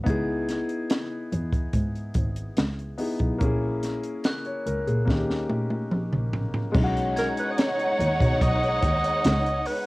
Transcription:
0.04 C#2 B3 D#4 E4 G#6, kick, closed hi-hat
0.10 G#4
0.49 snare, closed hi-hat
0.69 closed hi-hat
0.90 snare, closed hi-hat
1.32 E2, closed hi-hat
1.53 kick, closed hi-hat
1.73 G#2, kick, closed hi-hat
1.96 closed hi-hat
2.14 G#1, kick, closed hi-hat
2.36 closed hi-hat
2.57 C#2, snare, closed hi-hat
2.79 closed hi-hat
2.98 B3 D#4 E4 G#4, open hi-hat
3.19 B1, kick, closed hi-hat
3.38 A#1 A#3 C#4 E4, kick, closed hi-hat
3.44 G#4
3.83 snare, closed hi-hat
4.03 closed hi-hat
4.24 F#6, snare, closed hi-hat
4.45 C#5, closed hi-hat
4.66 C#2 A#4, closed hi-hat
4.87 A#2 G#4, closed hi-hat
5.05 D#2 A#3 C#4 D#4, kick
5.09 G4, snare
5.30 snare
5.50 A#2, high tom
5.70 high tom
5.91 A#1, mid tom
6.12 A#1, mid tom
6.33 floor tom
6.54 floor tom
6.72 B1 G#3 B3 C#4 D#4 C#5 F#5, kick, crash
6.78 E4
6.84 F#4
6.97 closed hi-hat
7.16 A#4 G#6, snare, closed hi-hat
7.37 B4, closed hi-hat
7.52 D#5
7.58 C#5, snare, closed hi-hat
7.79 closed hi-hat
7.99 D#2, closed hi-hat
8.20 B2, kick, closed hi-hat
8.41 B1 D#5, kick, closed hi-hat
8.64 closed hi-hat
8.83 D#2, kick, closed hi-hat
9.04 closed hi-hat
9.24 C#2, snare, closed hi-hat
9.46 closed hi-hat
9.66 B4, open hi-hat

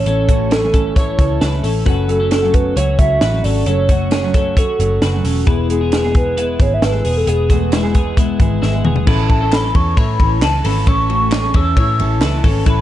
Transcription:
Already playing: C#4 E4 A4
0.05 A1 E3 A3 C#4 A4 C#5, closed hi-hat
0.28 E3 A3 C#4 F#4 A4, kick, closed hi-hat
0.51 C#4 G#4 A4, snare, closed hi-hat
0.63 A2 E3 A3 C#4 A4
0.74 C#4 A4, kick, closed hi-hat
0.96 E3 A3 C#4 E4 A4 C#5, kick, closed hi-hat
1.19 C#2 E3 A3 C#4 A4, kick, closed hi-hat
1.41 C#2 E4 B4, snare, closed hi-hat
1.52 A3 C#4 A4
1.63 A1 C#4 A4, open hi-hat
1.85 F#1 F#3 A3 C#4 F#4 A4 B4, kick, closed hi-hat
2.08 F#3 A3 C#4 F#4 A4, closed hi-hat
2.20 C#4 A4
2.31 C#4 A4, snare, closed hi-hat
2.42 F#2 C#3 F#3 A3 C#4 F#4
2.54 B4, kick, closed hi-hat
2.76 C#2 F#3 A3 C#4 F#4 C#5, closed hi-hat
2.98 C#2 F#3 A3 C#4 F#4 E5, kick, closed hi-hat
3.21 A1 F#4 B4, snare, closed hi-hat
3.32 F#3 A3 C#4 F#4
3.44 G#1 C#4 A4 D5, open hi-hat
3.66 F#1 F#3 A3 C#4 F#4 A4 C#5, closed hi-hat
3.89 F#3 A3 C#4 F#4, kick, closed hi-hat
4.11 C#4 G#4 C#5, snare, closed hi-hat
4.23 F#2 C#3 F#3 A3 C#4 F#4
4.34 C#4 A4, kick, closed hi-hat
4.56 F#3 A3 C#4 F#4 A4 C#5, kick, closed hi-hat
4.79 F#1 F#3 A3 C#4 F#4, closed hi-hat
5.02 F#1 F#4 B4, snare, closed hi-hat
5.13 F#3 A3 C#4 F#4
5.24 E1 C#4 A4, open hi-hat
5.46 E1 E3 G#3 B3 E4 G#4 B4, kick, closed hi-hat
5.69 E3 G#3 B3 G#4, closed hi-hat
5.81 B3 G#4
5.92 B3 G#4, snare, closed hi-hat
6.04 E2 B2 E3 G#3 B3 G#4
6.15 B4, kick, closed hi-hat
6.36 E3 G#3 B3 E4 G#4 B4, closed hi-hat
6.59 G#1 E3 G#3 B3 G#4 C#5, kick, closed hi-hat
6.74 E5
6.82 G#1 E4 A4 B4, snare, closed hi-hat
6.92 E3 G#3 B3 G#4
7.05 E1 B3 G#4, open hi-hat
7.17 A4
7.26 E1 E3 G#3 B3 G#4, closed hi-hat
7.49 E3 G#3 A3 B3 F#4 G#4, kick, closed hi-hat
7.72 G#3 E4, snare, closed hi-hat
7.83 E2 B2 E3 G#3 B3 G#4
7.95 B3 G#4, kick, closed hi-hat
8.16 E3 G#3 B3 E4 G#4, kick, closed hi-hat
8.39 G#1 E3 G#3 B3 G#4, kick, closed hi-hat
8.62 G#1 G#3 E4, snare
8.72 E3 G#3 B3 G#4
8.85 E1 B3 G#4, mid tom
8.96 floor tom
9.06 A1 A2 E3 A3 C#4 E4 A4 B4 B5, kick, crash
9.30 A5, kick, ride
9.41 C#4 A4
9.52 C#4 A4 B5, snare, clap, ride
9.63 A3 C#4 A4
9.74 E2 E3 A3 C#4 A4 C#6, kick, ride
9.97 A2 E4 C#5 B5, kick, ride
10.19 A1 E3 A3 C#4 A4, kick, ride
10.41 C#2 E3 A3 C#4 E4 A4 B4 A5, snare, clap, ride
10.64 G#1 E3 A3 C#4 A4 B5, open hi-hat, ride
10.87 A1 A2 E3 A3 C#4 A4 C#6, kick, ride
11.09 A3 F#4 C#6, ride
11.31 C#4 G#4 C#6, snare, clap, ride
11.43 A3 C#4 A4
11.54 E2 E3 A3 C#4 A4 E6, kick, ride
11.77 A2 E4 C#5, kick, ride
11.99 A1 E3 A3 C#4 A4, ride
12.21 C#2 E3 A3 C#4 E4 A4 B4, snare, clap, ride
12.43 G#1 E3 A3 C#4 A4, kick, open hi-hat, ride
12.65 A1 A2 E3 A3 C#4 E4 A4 B4 B5, kick, hi-hat pedal, ride

